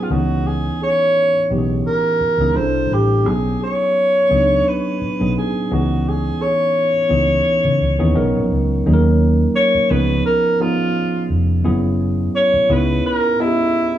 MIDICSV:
0, 0, Header, 1, 5, 480
1, 0, Start_track
1, 0, Tempo, 700117
1, 305, Time_signature, 4, 2, 24, 8
1, 9586, End_track
2, 0, Start_track
2, 0, Title_t, "Alto saxophone"
2, 0, Program_c, 0, 65
2, 20, Note_on_c, 0, 65, 52
2, 76, Note_on_c, 0, 66, 75
2, 86, Note_off_c, 0, 65, 0
2, 321, Note_on_c, 0, 68, 90
2, 331, Note_off_c, 0, 66, 0
2, 553, Note_off_c, 0, 68, 0
2, 567, Note_on_c, 0, 73, 96
2, 1068, Note_off_c, 0, 73, 0
2, 1280, Note_on_c, 0, 70, 91
2, 1756, Note_on_c, 0, 72, 89
2, 1766, Note_off_c, 0, 70, 0
2, 2011, Note_on_c, 0, 67, 78
2, 2021, Note_off_c, 0, 72, 0
2, 2241, Note_on_c, 0, 68, 91
2, 2251, Note_off_c, 0, 67, 0
2, 2475, Note_off_c, 0, 68, 0
2, 2489, Note_on_c, 0, 73, 95
2, 3212, Note_on_c, 0, 71, 88
2, 3222, Note_off_c, 0, 73, 0
2, 3680, Note_off_c, 0, 71, 0
2, 3686, Note_on_c, 0, 68, 78
2, 3901, Note_off_c, 0, 68, 0
2, 3929, Note_on_c, 0, 66, 76
2, 4173, Note_on_c, 0, 68, 90
2, 4183, Note_off_c, 0, 66, 0
2, 4401, Note_on_c, 0, 73, 90
2, 4411, Note_off_c, 0, 68, 0
2, 5834, Note_off_c, 0, 73, 0
2, 6552, Note_on_c, 0, 73, 105
2, 6791, Note_on_c, 0, 71, 96
2, 6801, Note_off_c, 0, 73, 0
2, 7028, Note_off_c, 0, 71, 0
2, 7033, Note_on_c, 0, 70, 98
2, 7278, Note_on_c, 0, 65, 85
2, 7289, Note_off_c, 0, 70, 0
2, 7751, Note_off_c, 0, 65, 0
2, 8471, Note_on_c, 0, 73, 94
2, 8718, Note_on_c, 0, 71, 83
2, 8728, Note_off_c, 0, 73, 0
2, 8950, Note_off_c, 0, 71, 0
2, 8955, Note_on_c, 0, 70, 96
2, 9190, Note_on_c, 0, 64, 104
2, 9201, Note_off_c, 0, 70, 0
2, 9586, Note_off_c, 0, 64, 0
2, 9586, End_track
3, 0, Start_track
3, 0, Title_t, "Tine electric piano"
3, 0, Program_c, 1, 4
3, 0, Control_c, 1, 64, 127
3, 0, Note_on_c, 1, 54, 69
3, 0, Note_on_c, 1, 59, 63
3, 0, Note_on_c, 1, 61, 65
3, 0, Note_on_c, 1, 63, 64
3, 0, Note_on_c, 1, 68, 78
3, 67, Note_on_c, 1, 51, 58
3, 74, Note_off_c, 1, 59, 0
3, 74, Note_off_c, 1, 61, 0
3, 74, Note_off_c, 1, 63, 0
3, 74, Note_on_c, 1, 59, 64
3, 74, Note_on_c, 1, 61, 71
3, 74, Note_on_c, 1, 63, 69
3, 75, Control_c, 1, 64, 0
3, 77, Note_off_c, 1, 54, 0
3, 78, Note_off_c, 1, 68, 0
3, 78, Note_on_c, 1, 68, 83
3, 113, Note_on_c, 1, 52, 76
3, 114, Note_off_c, 1, 51, 0
3, 187, Control_c, 1, 64, 127
3, 894, Note_off_c, 1, 59, 0
3, 894, Note_off_c, 1, 61, 0
3, 894, Note_off_c, 1, 63, 0
3, 896, Note_off_c, 1, 68, 0
3, 913, Note_off_c, 1, 52, 0
3, 1032, Note_on_c, 1, 52, 68
3, 1032, Note_on_c, 1, 59, 64
3, 1033, Note_on_c, 1, 61, 66
3, 1035, Note_on_c, 1, 63, 63
3, 1038, Note_on_c, 1, 67, 66
3, 1081, Note_off_c, 1, 67, 0
3, 1084, Note_on_c, 1, 68, 78
3, 1542, Note_off_c, 1, 52, 0
3, 1542, Note_off_c, 1, 59, 0
3, 1543, Note_off_c, 1, 61, 0
3, 1544, Note_off_c, 1, 63, 0
3, 1568, Note_off_c, 1, 68, 0
3, 1641, Note_on_c, 1, 52, 67
3, 1646, Note_on_c, 1, 59, 62
3, 1647, Note_on_c, 1, 61, 66
3, 1649, Note_on_c, 1, 63, 61
3, 1653, Note_on_c, 1, 68, 81
3, 1745, Note_on_c, 1, 55, 73
3, 1749, Note_off_c, 1, 52, 0
3, 1749, Note_on_c, 1, 62, 68
3, 1750, Note_on_c, 1, 60, 61
3, 1752, Note_off_c, 1, 59, 0
3, 1752, Note_off_c, 1, 61, 0
3, 1753, Note_off_c, 1, 63, 0
3, 1753, Note_on_c, 1, 64, 67
3, 1755, Note_off_c, 1, 68, 0
3, 1755, Control_c, 1, 64, 0
3, 1756, Note_on_c, 1, 69, 76
3, 1885, Control_c, 1, 64, 127
3, 2160, Note_off_c, 1, 55, 0
3, 2162, Note_off_c, 1, 62, 0
3, 2163, Note_off_c, 1, 60, 0
3, 2164, Note_off_c, 1, 64, 0
3, 2166, Note_off_c, 1, 69, 0
3, 2221, Note_on_c, 1, 54, 68
3, 2224, Note_on_c, 1, 59, 63
3, 2227, Note_on_c, 1, 61, 63
3, 2227, Note_on_c, 1, 63, 57
3, 2233, Note_on_c, 1, 66, 57
3, 2237, Control_c, 1, 64, 0
3, 2276, Note_on_c, 1, 68, 73
3, 2279, Note_off_c, 1, 66, 0
3, 2341, Control_c, 1, 64, 127
3, 2845, Note_off_c, 1, 54, 0
3, 2847, Note_off_c, 1, 59, 0
3, 2848, Note_off_c, 1, 63, 0
3, 2849, Note_off_c, 1, 61, 0
3, 2873, Note_off_c, 1, 68, 0
3, 2945, Note_on_c, 1, 54, 72
3, 2947, Note_on_c, 1, 59, 62
3, 2951, Note_on_c, 1, 61, 68
3, 2954, Note_on_c, 1, 62, 56
3, 2957, Note_on_c, 1, 68, 78
3, 2998, Note_on_c, 1, 63, 68
3, 3000, Note_off_c, 1, 62, 0
3, 3459, Note_off_c, 1, 54, 0
3, 3460, Note_off_c, 1, 59, 0
3, 3462, Note_off_c, 1, 61, 0
3, 3465, Note_off_c, 1, 68, 0
3, 3485, Note_off_c, 1, 63, 0
3, 3562, Note_on_c, 1, 54, 70
3, 3567, Note_on_c, 1, 59, 67
3, 3567, Note_on_c, 1, 61, 65
3, 3570, Note_on_c, 1, 63, 64
3, 3575, Note_on_c, 1, 68, 77
3, 3909, Note_off_c, 1, 59, 0
3, 3910, Note_off_c, 1, 61, 0
3, 3910, Note_off_c, 1, 63, 0
3, 3911, Note_off_c, 1, 54, 0
3, 3913, Note_off_c, 1, 68, 0
3, 3915, Note_on_c, 1, 52, 77
3, 3917, Note_on_c, 1, 59, 73
3, 3918, Control_c, 1, 64, 0
3, 3918, Note_on_c, 1, 61, 70
3, 3919, Note_on_c, 1, 63, 70
3, 3921, Note_on_c, 1, 68, 84
3, 4049, Control_c, 1, 64, 127
3, 4735, Note_off_c, 1, 52, 0
3, 4736, Note_off_c, 1, 59, 0
3, 4737, Note_off_c, 1, 61, 0
3, 4737, Note_off_c, 1, 63, 0
3, 4738, Note_off_c, 1, 68, 0
3, 4861, Note_on_c, 1, 52, 72
3, 4863, Note_on_c, 1, 59, 65
3, 4863, Note_on_c, 1, 61, 67
3, 4870, Note_on_c, 1, 63, 69
3, 4872, Note_on_c, 1, 68, 82
3, 5376, Note_off_c, 1, 52, 0
3, 5378, Note_off_c, 1, 59, 0
3, 5378, Note_off_c, 1, 61, 0
3, 5381, Note_off_c, 1, 63, 0
3, 5382, Note_off_c, 1, 68, 0
3, 5478, Note_on_c, 1, 52, 84
3, 5480, Note_on_c, 1, 59, 78
3, 5485, Note_on_c, 1, 68, 98
3, 5486, Note_on_c, 1, 61, 79
3, 5486, Note_on_c, 1, 63, 79
3, 5578, Note_off_c, 1, 61, 0
3, 5580, Note_off_c, 1, 59, 0
3, 5582, Note_off_c, 1, 63, 0
3, 5585, Note_on_c, 1, 54, 87
3, 5586, Note_on_c, 1, 61, 79
3, 5588, Note_off_c, 1, 52, 0
3, 5588, Note_on_c, 1, 59, 78
3, 5591, Note_on_c, 1, 63, 82
3, 5592, Note_off_c, 1, 68, 0
3, 5593, Note_on_c, 1, 70, 95
3, 5598, Control_c, 1, 64, 0
3, 5722, Control_c, 1, 64, 127
3, 6000, Note_off_c, 1, 54, 0
3, 6000, Note_off_c, 1, 61, 0
3, 6001, Note_off_c, 1, 59, 0
3, 6002, Note_off_c, 1, 63, 0
3, 6004, Note_off_c, 1, 70, 0
3, 6075, Note_on_c, 1, 54, 86
3, 6076, Note_on_c, 1, 58, 76
3, 6077, Control_c, 1, 64, 0
3, 6080, Note_on_c, 1, 61, 73
3, 6080, Note_on_c, 1, 63, 74
3, 6081, Note_on_c, 1, 68, 80
3, 6123, Note_off_c, 1, 68, 0
3, 6126, Note_on_c, 1, 70, 98
3, 6202, Control_c, 1, 64, 127
3, 6784, Note_off_c, 1, 61, 0
3, 6788, Note_off_c, 1, 63, 0
3, 6789, Note_on_c, 1, 53, 83
3, 6790, Note_off_c, 1, 54, 0
3, 6791, Note_off_c, 1, 58, 0
3, 6792, Note_on_c, 1, 59, 78
3, 6792, Note_on_c, 1, 61, 69
3, 6794, Control_c, 1, 64, 0
3, 6795, Note_on_c, 1, 68, 88
3, 6797, Note_on_c, 1, 63, 74
3, 6815, Note_off_c, 1, 70, 0
3, 6904, Control_c, 1, 64, 127
3, 7201, Note_off_c, 1, 53, 0
3, 7202, Note_off_c, 1, 59, 0
3, 7202, Note_off_c, 1, 61, 0
3, 7204, Note_off_c, 1, 63, 0
3, 7204, Note_off_c, 1, 68, 0
3, 7266, Note_on_c, 1, 53, 72
3, 7270, Note_on_c, 1, 59, 65
3, 7270, Note_on_c, 1, 61, 62
3, 7272, Note_on_c, 1, 63, 65
3, 7277, Note_on_c, 1, 68, 80
3, 7885, Note_off_c, 1, 53, 0
3, 7887, Note_off_c, 1, 59, 0
3, 7887, Note_off_c, 1, 61, 0
3, 7888, Note_off_c, 1, 63, 0
3, 7890, Note_off_c, 1, 68, 0
3, 7983, Note_on_c, 1, 54, 85
3, 7983, Note_on_c, 1, 59, 77
3, 7984, Note_on_c, 1, 64, 80
3, 7986, Note_on_c, 1, 61, 78
3, 7988, Note_on_c, 1, 68, 96
3, 7994, Control_c, 1, 64, 0
3, 8108, Control_c, 1, 64, 127
3, 8695, Note_off_c, 1, 59, 0
3, 8696, Note_off_c, 1, 61, 0
3, 8697, Note_off_c, 1, 64, 0
3, 8699, Note_off_c, 1, 68, 0
3, 8702, Note_off_c, 1, 54, 0
3, 8703, Note_on_c, 1, 59, 77
3, 8704, Note_on_c, 1, 61, 78
3, 8704, Note_on_c, 1, 63, 74
3, 8706, Note_on_c, 1, 64, 81
3, 8707, Note_on_c, 1, 68, 84
3, 8711, Control_c, 1, 64, 0
3, 8846, Control_c, 1, 64, 127
3, 9115, Note_off_c, 1, 59, 0
3, 9116, Note_off_c, 1, 61, 0
3, 9116, Note_off_c, 1, 63, 0
3, 9117, Note_off_c, 1, 64, 0
3, 9117, Note_off_c, 1, 68, 0
3, 9184, Note_on_c, 1, 59, 72
3, 9187, Note_on_c, 1, 75, 69
3, 9188, Note_on_c, 1, 61, 66
3, 9191, Note_on_c, 1, 64, 70
3, 9198, Note_on_c, 1, 67, 60
3, 9238, Note_off_c, 1, 67, 0
3, 9240, Note_on_c, 1, 68, 79
3, 9586, Note_off_c, 1, 59, 0
3, 9586, Note_off_c, 1, 61, 0
3, 9586, Note_off_c, 1, 64, 0
3, 9586, Note_off_c, 1, 68, 0
3, 9586, Note_off_c, 1, 75, 0
3, 9586, End_track
4, 0, Start_track
4, 0, Title_t, "Fingered electric bass"
4, 0, Program_c, 2, 33
4, 71, Note_on_c, 2, 37, 84
4, 473, Note_off_c, 2, 37, 0
4, 1035, Note_on_c, 2, 35, 74
4, 1233, Note_off_c, 2, 35, 0
4, 1633, Note_on_c, 2, 37, 76
4, 1728, Note_off_c, 2, 37, 0
4, 1750, Note_on_c, 2, 36, 91
4, 1951, Note_off_c, 2, 36, 0
4, 1990, Note_on_c, 2, 33, 70
4, 2232, Note_off_c, 2, 33, 0
4, 2232, Note_on_c, 2, 35, 96
4, 2432, Note_off_c, 2, 35, 0
4, 2955, Note_on_c, 2, 37, 76
4, 3154, Note_off_c, 2, 37, 0
4, 3571, Note_on_c, 2, 35, 79
4, 3659, Note_off_c, 2, 35, 0
4, 3920, Note_on_c, 2, 37, 82
4, 4319, Note_off_c, 2, 37, 0
4, 4872, Note_on_c, 2, 37, 77
4, 5072, Note_off_c, 2, 37, 0
4, 5243, Note_on_c, 2, 49, 92
4, 5333, Note_off_c, 2, 49, 0
4, 5354, Note_on_c, 2, 37, 85
4, 5461, Note_off_c, 2, 37, 0
4, 5487, Note_on_c, 2, 39, 83
4, 5576, Note_off_c, 2, 39, 0
4, 5597, Note_on_c, 2, 35, 88
4, 5702, Note_off_c, 2, 35, 0
4, 5732, Note_on_c, 2, 34, 87
4, 5819, Note_off_c, 2, 34, 0
4, 5839, Note_on_c, 2, 37, 76
4, 6036, Note_off_c, 2, 37, 0
4, 6076, Note_on_c, 2, 39, 93
4, 6475, Note_off_c, 2, 39, 0
4, 6793, Note_on_c, 2, 37, 94
4, 6991, Note_off_c, 2, 37, 0
4, 7747, Note_on_c, 2, 29, 84
4, 7947, Note_off_c, 2, 29, 0
4, 7993, Note_on_c, 2, 30, 102
4, 8392, Note_off_c, 2, 30, 0
4, 8704, Note_on_c, 2, 37, 97
4, 8905, Note_off_c, 2, 37, 0
4, 9586, End_track
5, 0, Start_track
5, 0, Title_t, "Muted fingered electric bass strokes"
5, 1512, Note_on_c, 9, 29, 42
5, 1581, Note_off_c, 9, 29, 0
5, 3437, Note_on_c, 9, 29, 45
5, 3506, Note_off_c, 9, 29, 0
5, 6683, Note_on_c, 9, 29, 46
5, 6751, Note_off_c, 9, 29, 0
5, 8595, Note_on_c, 9, 29, 45
5, 8664, Note_off_c, 9, 29, 0
5, 9586, End_track
0, 0, End_of_file